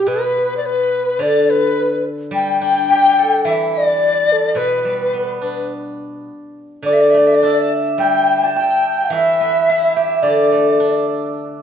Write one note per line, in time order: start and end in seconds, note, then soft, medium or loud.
0.00 0.10 G4 medium
0.07 1.21 B2 medium
0.07 0.64 B4 medium
0.07 0.57 B4 medium
0.57 0.67 D5 medium
0.64 1.23 B4 medium
0.64 1.24 B4 medium
1.19 2.88 D3 medium
1.19 1.43 D5 medium
1.19 1.52 D5 medium
1.44 1.51 D5 medium
1.49 2.05 B4 medium
1.49 2.06 B4 medium
2.31 3.99 G3 medium
2.31 3.47 G5 loud
2.31 3.41 G5 loud
2.61 3.72 D4 soft
2.90 4.01 G4 soft
3.18 4.29 A4 soft
3.45 5.13 E3 medium
3.45 3.71 E5 medium
3.49 3.79 E5 medium
3.72 4.58 D5 medium
3.78 4.34 D5 medium
4.32 4.61 A4 medium
4.55 6.27 B2 medium
4.55 5.42 B4 medium
4.60 5.72 B4 medium
4.85 5.99 G3 soft
5.13 6.28 B3 soft
5.41 6.56 D4 soft
5.41 5.69 B4 medium
6.82 8.55 D3 medium
6.82 7.67 D5 loud
6.82 9.32 D5 medium
6.82 6.95 D5 medium
6.93 7.02 E5 medium
7.01 7.12 D5 medium
7.10 8.28 A3 soft
7.10 7.19 E5 medium
7.18 7.28 D5 medium
7.27 7.37 E5 medium
7.35 7.71 D5 medium
7.43 8.56 D4 soft
7.43 9.12 E5 medium
7.98 9.67 G3 medium
7.98 8.52 G5 medium
7.98 8.56 G5 medium
8.43 10.36 A5 medium
8.55 9.12 G5 medium
8.55 10.63 G5 medium
8.55 9.13 G5 medium
9.10 10.78 E3 medium
9.10 10.24 E5 medium
9.10 10.25 E5 medium
9.10 9.96 E5 medium
9.40 10.52 B3 soft
9.69 10.80 E4 soft
9.96 11.07 G4 soft
9.96 11.62 E5 medium
10.22 11.62 D3 medium
10.22 11.06 D5 medium
10.22 11.07 D5 medium
10.22 11.62 D5 medium
10.52 11.62 A3 soft
10.80 11.62 D4 soft